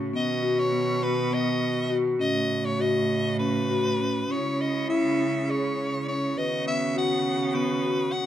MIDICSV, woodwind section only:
0, 0, Header, 1, 2, 480
1, 0, Start_track
1, 0, Key_signature, 4, "minor"
1, 0, Tempo, 591133
1, 120, Time_signature, 7, 3, 24, 8
1, 6709, End_track
2, 0, Start_track
2, 0, Title_t, "Woodwind section"
2, 0, Program_c, 0, 71
2, 0, Note_on_c, 0, 49, 62
2, 0, Note_on_c, 0, 57, 58
2, 0, Note_on_c, 0, 66, 63
2, 102, Note_off_c, 0, 57, 0
2, 102, Note_on_c, 0, 51, 65
2, 103, Note_off_c, 0, 49, 0
2, 106, Note_on_c, 0, 59, 58
2, 1762, Note_off_c, 0, 51, 0
2, 1764, Note_off_c, 0, 59, 0
2, 1781, Note_on_c, 0, 57, 59
2, 1785, Note_on_c, 0, 49, 65
2, 3351, Note_off_c, 0, 49, 0
2, 3351, Note_off_c, 0, 57, 0
2, 3351, Note_off_c, 0, 66, 0
2, 3489, Note_on_c, 0, 64, 64
2, 3492, Note_on_c, 0, 49, 63
2, 3495, Note_on_c, 0, 56, 54
2, 5156, Note_off_c, 0, 64, 0
2, 5158, Note_off_c, 0, 49, 0
2, 5159, Note_off_c, 0, 56, 0
2, 5165, Note_on_c, 0, 59, 52
2, 5165, Note_on_c, 0, 66, 65
2, 5166, Note_on_c, 0, 51, 59
2, 6709, Note_off_c, 0, 51, 0
2, 6709, Note_off_c, 0, 59, 0
2, 6709, Note_off_c, 0, 66, 0
2, 6709, End_track
0, 0, End_of_file